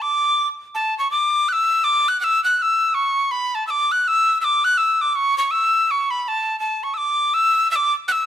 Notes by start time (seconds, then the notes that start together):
0.02 D6
0.75 A5
0.99 C#6
1.11 D6
1.49 F#6
1.53 E6
1.84 D6
2.08 F#6
2.21 E6 F#6
2.44 F#6
2.58 F#6
2.62 E6
2.94 C#6
3.31 B5
3.55 A5
3.67 D6 E6
3.92 F#6
4.04 E6 F#6
4.41 D6 E6
4.64 F#6
4.78 E6
5.01 D6
5.12 C#6 D6
5.38 C#6
5.51 E6
5.88 C#6 E6
6.11 B5
6.24 B5
6.28 A5
6.60 A5
6.83 C#6
6.94 D6 E6
7.34 E6
7.71 E6
7.76 D6
8.08 E6 F#6